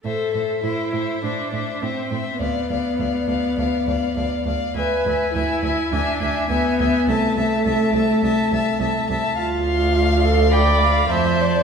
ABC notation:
X:1
M:4/4
L:1/8
Q:1/4=103
K:Am
V:1 name="Violin"
e e e e e e e e | f f f f f f f f | ^g g g g g g g g | a a a a a a a a |
a c'3 b2 a2 |]
V:2 name="Violin"
c c c c c c c c | d d d d d d d d | e e e e e e e e | e e e e e e e e |
f4 g f e d |]
V:3 name="Viola"
A2 E2 D2 C2 | B,6- B, z | B2 E2 D2 B,2 | A,6- A, z |
F3 A d2 c2 |]
V:4 name="Cello" clef=bass
A,, A,, A,, A,, A,, A,, A,, A,, | D,, D,, D,, D,, D,, D,, D,, D,, | D,, D,, D,, D,, D,, D,, D,, D,, | C,, C,, C,, C,, C,, C,, C,, C,, |
D,,6 F,,2 |]